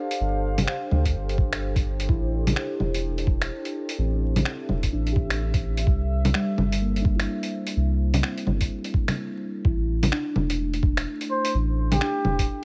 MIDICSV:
0, 0, Header, 1, 6, 480
1, 0, Start_track
1, 0, Key_signature, 0, "minor"
1, 0, Tempo, 472441
1, 205, Time_signature, 4, 2, 24, 8
1, 12842, End_track
2, 0, Start_track
2, 0, Title_t, "Muted trumpet"
2, 0, Program_c, 0, 59
2, 11481, Note_on_c, 0, 72, 93
2, 11738, Note_off_c, 0, 72, 0
2, 12110, Note_on_c, 0, 67, 100
2, 12772, Note_off_c, 0, 67, 0
2, 12842, End_track
3, 0, Start_track
3, 0, Title_t, "Ambient pad"
3, 0, Program_c, 1, 92
3, 0, Note_on_c, 1, 62, 72
3, 0, Note_on_c, 1, 67, 93
3, 0, Note_on_c, 1, 69, 81
3, 0, Note_on_c, 1, 72, 81
3, 0, Note_on_c, 1, 77, 93
3, 2125, Note_off_c, 1, 77, 0
3, 3863, Note_on_c, 1, 76, 84
3, 9323, Note_off_c, 1, 67, 0
3, 9324, Note_off_c, 1, 62, 0
3, 9324, Note_off_c, 1, 69, 0
3, 9324, Note_off_c, 1, 72, 0
3, 9325, Note_off_c, 1, 76, 0
3, 9804, Note_on_c, 1, 57, 74
3, 12842, Note_off_c, 1, 57, 0
3, 12842, End_track
4, 0, Start_track
4, 0, Title_t, "Synth keys"
4, 0, Program_c, 2, 88
4, 0, Control_c, 2, 64, 127
4, 0, Note_on_c, 2, 62, 66
4, 2126, Note_on_c, 2, 64, 71
4, 2138, Control_c, 2, 64, 0
4, 2147, Note_off_c, 2, 62, 0
4, 2333, Control_c, 2, 64, 127
4, 2620, Note_off_c, 2, 64, 0
4, 4047, Note_on_c, 2, 60, 48
4, 4540, Note_off_c, 2, 60, 0
4, 5006, Note_on_c, 2, 62, 70
4, 5206, Note_on_c, 2, 67, 51
4, 5500, Note_off_c, 2, 62, 0
4, 5658, Note_off_c, 2, 67, 0
4, 5976, Control_c, 2, 64, 0
4, 6176, Control_c, 2, 64, 127
4, 6448, Note_on_c, 2, 55, 78
4, 6928, Note_on_c, 2, 58, 59
4, 6941, Note_off_c, 2, 55, 0
4, 7126, Note_on_c, 2, 62, 53
4, 7272, Note_on_c, 2, 64, 54
4, 7421, Note_off_c, 2, 58, 0
4, 7578, Note_off_c, 2, 62, 0
4, 7717, Note_off_c, 2, 64, 0
4, 8365, Note_on_c, 2, 60, 55
4, 8859, Note_off_c, 2, 60, 0
4, 9804, Note_on_c, 2, 64, 53
4, 9818, Control_c, 2, 64, 0
4, 10023, Control_c, 2, 64, 127
4, 10285, Note_on_c, 2, 62, 80
4, 10299, Note_off_c, 2, 64, 0
4, 10779, Note_off_c, 2, 62, 0
4, 12206, Note_on_c, 2, 62, 65
4, 12700, Note_off_c, 2, 62, 0
4, 12842, End_track
5, 0, Start_track
5, 0, Title_t, "Sub bass"
5, 0, Program_c, 3, 38
5, 206, Note_on_c, 3, 31, 95
5, 674, Note_off_c, 3, 31, 0
5, 928, Note_on_c, 3, 38, 88
5, 1152, Note_off_c, 3, 38, 0
5, 1166, Note_on_c, 3, 31, 85
5, 2114, Note_off_c, 3, 31, 0
5, 2123, Note_on_c, 3, 33, 94
5, 2592, Note_off_c, 3, 33, 0
5, 2848, Note_on_c, 3, 28, 86
5, 3315, Note_off_c, 3, 28, 0
5, 3324, Note_on_c, 3, 28, 89
5, 3550, Note_off_c, 3, 28, 0
5, 4046, Note_on_c, 3, 33, 98
5, 4514, Note_off_c, 3, 33, 0
5, 4770, Note_on_c, 3, 28, 87
5, 4992, Note_off_c, 3, 28, 0
5, 5008, Note_on_c, 3, 33, 85
5, 5955, Note_off_c, 3, 33, 0
5, 5964, Note_on_c, 3, 36, 97
5, 6433, Note_off_c, 3, 36, 0
5, 6686, Note_on_c, 3, 31, 85
5, 7153, Note_off_c, 3, 31, 0
5, 7164, Note_on_c, 3, 31, 91
5, 7389, Note_off_c, 3, 31, 0
5, 7888, Note_on_c, 3, 36, 96
5, 8355, Note_off_c, 3, 36, 0
5, 8606, Note_on_c, 3, 31, 88
5, 8830, Note_off_c, 3, 31, 0
5, 9803, Note_on_c, 3, 33, 98
5, 10272, Note_off_c, 3, 33, 0
5, 10525, Note_on_c, 3, 28, 87
5, 10993, Note_off_c, 3, 28, 0
5, 11003, Note_on_c, 3, 28, 92
5, 11229, Note_off_c, 3, 28, 0
5, 11727, Note_on_c, 3, 33, 102
5, 12194, Note_off_c, 3, 33, 0
5, 12446, Note_on_c, 3, 28, 89
5, 12671, Note_off_c, 3, 28, 0
5, 12842, End_track
6, 0, Start_track
6, 0, Title_t, "Drums"
6, 111, Note_on_c, 9, 42, 57
6, 213, Note_off_c, 9, 42, 0
6, 589, Note_on_c, 9, 42, 54
6, 589, Note_on_c, 9, 61, 59
6, 686, Note_on_c, 9, 26, 107
6, 690, Note_off_c, 9, 42, 0
6, 690, Note_off_c, 9, 61, 0
6, 787, Note_off_c, 9, 26, 0
6, 928, Note_on_c, 9, 61, 50
6, 1030, Note_off_c, 9, 61, 0
6, 1068, Note_on_c, 9, 36, 60
6, 1072, Note_on_c, 9, 42, 53
6, 1170, Note_off_c, 9, 36, 0
6, 1174, Note_off_c, 9, 42, 0
6, 1314, Note_on_c, 9, 42, 29
6, 1403, Note_on_c, 9, 36, 106
6, 1416, Note_off_c, 9, 42, 0
6, 1504, Note_off_c, 9, 36, 0
6, 1551, Note_on_c, 9, 26, 100
6, 1551, Note_on_c, 9, 42, 52
6, 1652, Note_off_c, 9, 26, 0
6, 1652, Note_off_c, 9, 42, 0
6, 1787, Note_on_c, 9, 36, 108
6, 1791, Note_on_c, 9, 42, 43
6, 1889, Note_off_c, 9, 36, 0
6, 1893, Note_off_c, 9, 42, 0
6, 2030, Note_on_c, 9, 42, 53
6, 2122, Note_on_c, 9, 36, 116
6, 2131, Note_off_c, 9, 42, 0
6, 2224, Note_off_c, 9, 36, 0
6, 2510, Note_on_c, 9, 42, 51
6, 2510, Note_on_c, 9, 61, 60
6, 2604, Note_on_c, 9, 26, 103
6, 2612, Note_off_c, 9, 42, 0
6, 2612, Note_off_c, 9, 61, 0
6, 2705, Note_off_c, 9, 26, 0
6, 2844, Note_on_c, 9, 61, 49
6, 2946, Note_off_c, 9, 61, 0
6, 2992, Note_on_c, 9, 42, 52
6, 3093, Note_off_c, 9, 42, 0
6, 3231, Note_on_c, 9, 42, 28
6, 3323, Note_on_c, 9, 36, 103
6, 3333, Note_off_c, 9, 42, 0
6, 3424, Note_off_c, 9, 36, 0
6, 3470, Note_on_c, 9, 26, 100
6, 3470, Note_on_c, 9, 42, 50
6, 3572, Note_off_c, 9, 26, 0
6, 3572, Note_off_c, 9, 42, 0
6, 3711, Note_on_c, 9, 42, 41
6, 3812, Note_off_c, 9, 42, 0
6, 3951, Note_on_c, 9, 42, 52
6, 4053, Note_off_c, 9, 42, 0
6, 4431, Note_on_c, 9, 42, 52
6, 4431, Note_on_c, 9, 61, 63
6, 4525, Note_on_c, 9, 26, 101
6, 4533, Note_off_c, 9, 42, 0
6, 4533, Note_off_c, 9, 61, 0
6, 4627, Note_off_c, 9, 26, 0
6, 4764, Note_on_c, 9, 61, 50
6, 4866, Note_off_c, 9, 61, 0
6, 4908, Note_on_c, 9, 36, 58
6, 4908, Note_on_c, 9, 42, 53
6, 5010, Note_off_c, 9, 36, 0
6, 5010, Note_off_c, 9, 42, 0
6, 5148, Note_on_c, 9, 42, 29
6, 5243, Note_on_c, 9, 36, 103
6, 5249, Note_off_c, 9, 42, 0
6, 5344, Note_off_c, 9, 36, 0
6, 5389, Note_on_c, 9, 26, 96
6, 5389, Note_on_c, 9, 42, 51
6, 5491, Note_off_c, 9, 26, 0
6, 5491, Note_off_c, 9, 42, 0
6, 5628, Note_on_c, 9, 36, 99
6, 5628, Note_on_c, 9, 42, 42
6, 5729, Note_off_c, 9, 36, 0
6, 5730, Note_off_c, 9, 42, 0
6, 5866, Note_on_c, 9, 42, 52
6, 5963, Note_on_c, 9, 36, 109
6, 5968, Note_off_c, 9, 42, 0
6, 6064, Note_off_c, 9, 36, 0
6, 6349, Note_on_c, 9, 42, 52
6, 6349, Note_on_c, 9, 61, 65
6, 6443, Note_on_c, 9, 26, 101
6, 6451, Note_off_c, 9, 42, 0
6, 6451, Note_off_c, 9, 61, 0
6, 6545, Note_off_c, 9, 26, 0
6, 6685, Note_on_c, 9, 61, 54
6, 6786, Note_off_c, 9, 61, 0
6, 6832, Note_on_c, 9, 42, 54
6, 6934, Note_off_c, 9, 42, 0
6, 7074, Note_on_c, 9, 42, 29
6, 7163, Note_on_c, 9, 36, 99
6, 7176, Note_off_c, 9, 42, 0
6, 7264, Note_off_c, 9, 36, 0
6, 7311, Note_on_c, 9, 26, 98
6, 7311, Note_on_c, 9, 42, 52
6, 7412, Note_off_c, 9, 26, 0
6, 7412, Note_off_c, 9, 42, 0
6, 7549, Note_on_c, 9, 42, 43
6, 7651, Note_off_c, 9, 42, 0
6, 7789, Note_on_c, 9, 42, 55
6, 7890, Note_off_c, 9, 42, 0
6, 8268, Note_on_c, 9, 42, 54
6, 8268, Note_on_c, 9, 61, 68
6, 8364, Note_on_c, 9, 26, 102
6, 8369, Note_off_c, 9, 42, 0
6, 8369, Note_off_c, 9, 61, 0
6, 8466, Note_off_c, 9, 26, 0
6, 8510, Note_on_c, 9, 42, 31
6, 8603, Note_on_c, 9, 61, 56
6, 8611, Note_off_c, 9, 42, 0
6, 8705, Note_off_c, 9, 61, 0
6, 8745, Note_on_c, 9, 42, 55
6, 8749, Note_on_c, 9, 36, 56
6, 8847, Note_off_c, 9, 42, 0
6, 8850, Note_off_c, 9, 36, 0
6, 8985, Note_on_c, 9, 42, 30
6, 9083, Note_on_c, 9, 36, 101
6, 9087, Note_off_c, 9, 42, 0
6, 9184, Note_off_c, 9, 36, 0
6, 9227, Note_on_c, 9, 26, 97
6, 9227, Note_on_c, 9, 42, 54
6, 9227, Note_on_c, 9, 61, 62
6, 9328, Note_off_c, 9, 26, 0
6, 9328, Note_off_c, 9, 42, 0
6, 9328, Note_off_c, 9, 61, 0
6, 9802, Note_on_c, 9, 36, 121
6, 9904, Note_off_c, 9, 36, 0
6, 10189, Note_on_c, 9, 42, 56
6, 10189, Note_on_c, 9, 61, 68
6, 10282, Note_on_c, 9, 26, 105
6, 10291, Note_off_c, 9, 42, 0
6, 10291, Note_off_c, 9, 61, 0
6, 10384, Note_off_c, 9, 26, 0
6, 10523, Note_on_c, 9, 61, 55
6, 10624, Note_off_c, 9, 61, 0
6, 10667, Note_on_c, 9, 42, 59
6, 10768, Note_off_c, 9, 42, 0
6, 10907, Note_on_c, 9, 42, 33
6, 11002, Note_on_c, 9, 36, 107
6, 11009, Note_off_c, 9, 42, 0
6, 11103, Note_off_c, 9, 36, 0
6, 11149, Note_on_c, 9, 26, 100
6, 11149, Note_on_c, 9, 42, 56
6, 11250, Note_off_c, 9, 26, 0
6, 11250, Note_off_c, 9, 42, 0
6, 11389, Note_on_c, 9, 42, 46
6, 11490, Note_off_c, 9, 42, 0
6, 11630, Note_on_c, 9, 42, 60
6, 11732, Note_off_c, 9, 42, 0
6, 12108, Note_on_c, 9, 42, 58
6, 12108, Note_on_c, 9, 61, 68
6, 12203, Note_on_c, 9, 26, 112
6, 12209, Note_off_c, 9, 42, 0
6, 12209, Note_off_c, 9, 61, 0
6, 12305, Note_off_c, 9, 26, 0
6, 12442, Note_on_c, 9, 61, 54
6, 12544, Note_off_c, 9, 61, 0
6, 12587, Note_on_c, 9, 36, 64
6, 12589, Note_on_c, 9, 42, 57
6, 12689, Note_off_c, 9, 36, 0
6, 12691, Note_off_c, 9, 42, 0
6, 12842, End_track
0, 0, End_of_file